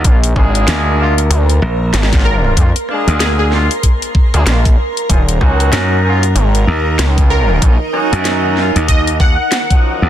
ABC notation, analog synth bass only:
X:1
M:4/4
L:1/16
Q:"Swing 16ths" 1/4=95
K:Ebdor
V:1 name="Analog synth bass" clef=bass
B,,,2 A,,,2 z4 =D,,2 z2 A,,,4 | F,, z8 z2 =D,, B,,,2 z2 | E,,,2 D,,2 z4 A,,,2 z2 D,,4 | B,,, z12 z3 |]